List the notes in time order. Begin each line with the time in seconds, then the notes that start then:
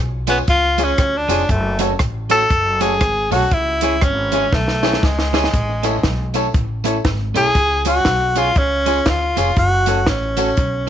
Already playing: B1
0.27 G#3 B3 C#4 F4 G#4 C#5, closed hi-hat, tambourine
0.48 C#2 F4, kick, closed hi-hat
0.78 G#3 C#4 F4 G#4 C#5, closed hi-hat, tambourine
0.84 C#4
0.98 D2, kick, cross-stick, closed hi-hat
1.17 D4
1.28 F1 G#3 C#4 F4 G#4 C#5, closed hi-hat, tambourine
1.49 F#1 A3, kick, closed hi-hat
1.79 A3 C#4 F#4 A4 C#5, closed hi-hat, tambourine
1.99 A1, kick, cross-stick, closed hi-hat
2.29 A3 C#4 F#4 A4 C#5, closed hi-hat, tambourine
2.50 F#1, kick, closed hi-hat
2.80 A3 C#4 F#4 G#4 A4 C#5, closed hi-hat, tambourine
3.01 G#1, kick, cross-stick, closed hi-hat
3.31 B1 A3 C#4 F#4 A4 C#5, open hi-hat, tambourine
3.51 C#2 E4, kick, closed hi-hat
3.81 G#3 C#4 E4 G#4 C#5, closed hi-hat, tambourine
4.01 G#1 C#4, kick, cross-stick, closed hi-hat
4.32 G#3 C#4 E4 G#4 C#5, closed hi-hat, tambourine
4.52 B1 A3, kick, snare
4.68 snare
4.82 G#3 C#4 E4 G#4 C#5, snare, tambourine
4.93 snare
5.03 C#2 G#3, kick, snare
5.19 snare
5.33 G#3 C#4 E4 G#4 C#5, snare, tambourine
5.44 snare
5.53 A1, kick, closed hi-hat
5.83 A3 C#4 E4 A4 C#5, closed hi-hat, tambourine
6.03 B1, kick, snare, closed hi-hat
6.34 A3 C#4 E4 A4 C#5, closed hi-hat, tambourine
6.54 A1, kick, closed hi-hat
6.84 A3 C#4 E4 A4 C#5, closed hi-hat, tambourine
7.05 G#1, kick, snare, closed hi-hat
7.34 B1 A3 C#4 E4 G#4 A4 C#5, closed hi-hat, tambourine
7.55 C#2, kick, closed hi-hat
7.85 G#3 C#4 F4 F#4 G#4 C#5, closed hi-hat, tambourine
8.05 B1, kick, snare, closed hi-hat
8.36 G#3 C#4 F4 G#4 C#5, closed hi-hat, tambourine
8.56 C#2 C#4, kick, closed hi-hat
8.86 G#3 C#4 F4 G#4 C#5, closed hi-hat, tambourine
9.06 D2 F4, kick, snare, closed hi-hat
9.36 F1 G#3 C#4 F4 G#4 C#5, closed hi-hat, tambourine
9.56 F#1 F#4, kick, closed hi-hat
9.86 A3 C#4 F#4 A4 C#5, closed hi-hat, tambourine
10.06 A1 C#4, kick, snare, closed hi-hat
10.37 A3 C#4 F#4 A4 C#5, closed hi-hat, tambourine
10.57 B1, kick, closed hi-hat